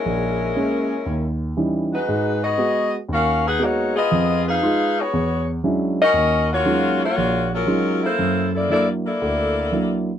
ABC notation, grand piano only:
X:1
M:4/4
L:1/8
Q:"Swing" 1/4=118
K:Ebm
V:1 name="Grand piano"
B,,,2 [A,B,D] z E,,2 [_F,=G,DE] z | A,,2 [A,CG] z E,,2 [A,CG] z | [F,,F,]2 [A,EF] z =E,,2 [^F,^G,^C=D=E] z | E,,2 [G,A,DEF] z B,,,2 [G,A,DEF] z |
G,,2 [G,B,=D_F] z =D,,2 [G,B,DF] z |]